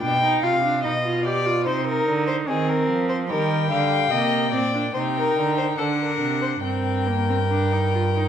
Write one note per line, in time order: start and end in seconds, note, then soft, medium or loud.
0.01 0.42 B2 medium
0.01 0.21 D4 medium
0.01 0.42 G5 medium
0.22 0.45 D#4 medium
0.43 0.86 C3 medium
0.43 0.63 F4 medium
0.43 0.83 F5 medium
0.64 0.84 D4 medium
0.84 1.68 B2 medium
0.84 0.92 D#4 medium
0.84 1.25 D#5 medium
1.05 1.27 F4 medium
1.25 1.47 G4 medium
1.25 1.66 D5 medium
1.46 1.68 F4 medium
1.66 2.06 C3 medium
1.66 2.50 D#4 medium
1.66 1.86 C5 medium
1.87 2.27 A#4 medium
2.07 2.47 D3 medium
2.27 2.35 C5 medium
2.48 2.88 D#3 medium
2.48 3.30 C4 medium
2.48 2.70 G#4 medium
2.69 3.08 A#4 medium
2.89 3.31 F3 medium
3.09 3.17 C5 medium
3.28 3.70 D#3 medium
3.28 4.11 G3 medium
3.28 3.69 A#4 medium
3.28 4.91 G5 medium
3.70 4.11 D3 medium
3.70 4.12 F5 medium
4.11 4.54 C3 medium
4.11 4.53 A#3 medium
4.11 4.51 D#5 medium
4.52 4.95 A#2 medium
4.52 4.74 C4 medium
4.52 4.93 D5 medium
4.75 4.83 D4 medium
4.94 5.36 C3 medium
4.94 5.80 D#4 medium
4.94 5.02 C5 medium
4.94 5.77 G5 medium
5.16 5.57 A#4 medium
5.37 5.78 D3 medium
5.58 5.66 C5 medium
5.78 6.21 D3 medium
5.78 6.63 D4 medium
5.78 5.86 A4 medium
5.78 6.62 F#5 medium
6.00 6.41 A#4 medium
6.22 6.64 C3 medium
6.42 6.50 C5 medium
6.63 8.28 G2 medium
6.63 7.09 C4 medium
6.63 8.28 A#4 medium
6.63 8.28 G5 medium
7.08 7.29 A#3 medium
7.29 7.37 C4 medium
7.51 7.74 D4 medium
7.73 7.94 D#4 medium
7.95 8.03 F4 soft
8.16 8.28 D#4 medium